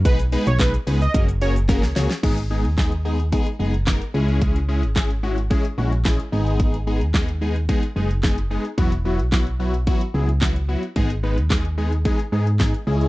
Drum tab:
CC |----------------|x---------------|----------------|----------------|
HH |xxoxxxoxxxoxxxox|xx-xxx-xxx-xxx-x|xx-xxx-xxx-xxx-x|xx-xxx-xxx-xxx-x|
SH |xxxxxxxxxxxxxxxx|----------------|----------------|----------------|
CP |----x-----------|----x-------x---|----x-------x---|----x-------x---|
SD |----o-------oooo|----o-------o---|----o-------o---|----o-------o---|
BD |o---o---o---o---|o---o---o---o---|o---o---o---o---|o---o---o---o---|

CC |----------------|----------------|
HH |xx-xxx-xxx-xxx-x|xx-xxx-xxx-xxx-x|
SH |----------------|----------------|
CP |----x-------x---|----x-------x---|
SD |----o-------o---|----o-------o---|
BD |o---o---o---o---|o---o---o---o---|